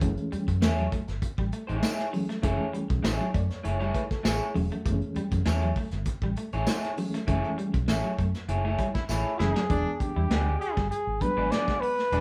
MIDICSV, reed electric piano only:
0, 0, Header, 1, 2, 480
1, 0, Start_track
1, 0, Tempo, 605449
1, 13, Time_signature, 4, 2, 24, 8
1, 9676, End_track
2, 0, Start_track
2, 0, Title_t, "Reed electric piano"
2, 0, Program_c, 0, 4
2, 10, Note_on_c, 0, 52, 101
2, 11, Note_on_c, 0, 56, 90
2, 12, Note_on_c, 0, 57, 79
2, 16, Note_on_c, 0, 61, 111
2, 627, Note_off_c, 0, 52, 0
2, 628, Note_off_c, 0, 56, 0
2, 629, Note_off_c, 0, 57, 0
2, 631, Note_off_c, 0, 61, 0
2, 1687, Note_on_c, 0, 52, 83
2, 1688, Note_on_c, 0, 56, 80
2, 1690, Note_on_c, 0, 57, 79
2, 1691, Note_on_c, 0, 61, 93
2, 1847, Note_off_c, 0, 52, 0
2, 1847, Note_off_c, 0, 56, 0
2, 1848, Note_off_c, 0, 57, 0
2, 1849, Note_off_c, 0, 61, 0
2, 1924, Note_on_c, 0, 52, 95
2, 1925, Note_on_c, 0, 56, 89
2, 1927, Note_on_c, 0, 57, 90
2, 1928, Note_on_c, 0, 61, 110
2, 2544, Note_off_c, 0, 52, 0
2, 2544, Note_off_c, 0, 56, 0
2, 2545, Note_off_c, 0, 57, 0
2, 2546, Note_off_c, 0, 61, 0
2, 2651, Note_on_c, 0, 74, 78
2, 2769, Note_off_c, 0, 74, 0
2, 2771, Note_on_c, 0, 73, 63
2, 2879, Note_off_c, 0, 73, 0
2, 2888, Note_on_c, 0, 73, 73
2, 3112, Note_off_c, 0, 73, 0
2, 3132, Note_on_c, 0, 71, 68
2, 3249, Note_off_c, 0, 71, 0
2, 3257, Note_on_c, 0, 69, 70
2, 3362, Note_off_c, 0, 69, 0
2, 3365, Note_on_c, 0, 68, 82
2, 3590, Note_off_c, 0, 68, 0
2, 3603, Note_on_c, 0, 52, 90
2, 3604, Note_on_c, 0, 56, 88
2, 3606, Note_on_c, 0, 66, 65
2, 3608, Note_on_c, 0, 61, 96
2, 3609, Note_on_c, 0, 57, 86
2, 3764, Note_off_c, 0, 52, 0
2, 3764, Note_off_c, 0, 56, 0
2, 3767, Note_off_c, 0, 57, 0
2, 3767, Note_off_c, 0, 61, 0
2, 3831, Note_off_c, 0, 66, 0
2, 3844, Note_on_c, 0, 52, 100
2, 3845, Note_on_c, 0, 56, 95
2, 3849, Note_on_c, 0, 57, 85
2, 3850, Note_on_c, 0, 59, 85
2, 3901, Note_on_c, 0, 61, 104
2, 3904, Note_off_c, 0, 59, 0
2, 4463, Note_off_c, 0, 52, 0
2, 4464, Note_off_c, 0, 56, 0
2, 4466, Note_off_c, 0, 57, 0
2, 4491, Note_off_c, 0, 61, 0
2, 5528, Note_on_c, 0, 52, 89
2, 5529, Note_on_c, 0, 56, 74
2, 5532, Note_on_c, 0, 57, 81
2, 5533, Note_on_c, 0, 61, 102
2, 5686, Note_off_c, 0, 52, 0
2, 5686, Note_off_c, 0, 56, 0
2, 5688, Note_off_c, 0, 57, 0
2, 5688, Note_off_c, 0, 61, 0
2, 5767, Note_on_c, 0, 52, 97
2, 5768, Note_on_c, 0, 56, 89
2, 5771, Note_on_c, 0, 57, 87
2, 5774, Note_on_c, 0, 61, 106
2, 6384, Note_off_c, 0, 52, 0
2, 6385, Note_off_c, 0, 56, 0
2, 6386, Note_off_c, 0, 57, 0
2, 6388, Note_off_c, 0, 61, 0
2, 7449, Note_on_c, 0, 52, 83
2, 7451, Note_on_c, 0, 56, 84
2, 7452, Note_on_c, 0, 57, 85
2, 7456, Note_on_c, 0, 61, 104
2, 7607, Note_off_c, 0, 52, 0
2, 7607, Note_off_c, 0, 56, 0
2, 7608, Note_off_c, 0, 57, 0
2, 7610, Note_off_c, 0, 61, 0
2, 7685, Note_on_c, 0, 52, 78
2, 7688, Note_on_c, 0, 56, 67
2, 7689, Note_on_c, 0, 59, 78
2, 7691, Note_on_c, 0, 62, 85
2, 8304, Note_off_c, 0, 52, 0
2, 8305, Note_off_c, 0, 56, 0
2, 8306, Note_off_c, 0, 59, 0
2, 8307, Note_off_c, 0, 62, 0
2, 8888, Note_on_c, 0, 54, 67
2, 8888, Note_on_c, 0, 56, 61
2, 8891, Note_on_c, 0, 59, 69
2, 8894, Note_on_c, 0, 62, 79
2, 9349, Note_off_c, 0, 54, 0
2, 9349, Note_off_c, 0, 56, 0
2, 9351, Note_off_c, 0, 59, 0
2, 9352, Note_off_c, 0, 62, 0
2, 9613, Note_on_c, 0, 54, 82
2, 9613, Note_on_c, 0, 56, 67
2, 9614, Note_on_c, 0, 59, 74
2, 9617, Note_on_c, 0, 62, 80
2, 9676, Note_off_c, 0, 54, 0
2, 9676, Note_off_c, 0, 56, 0
2, 9676, Note_off_c, 0, 59, 0
2, 9676, Note_off_c, 0, 62, 0
2, 9676, End_track
0, 0, End_of_file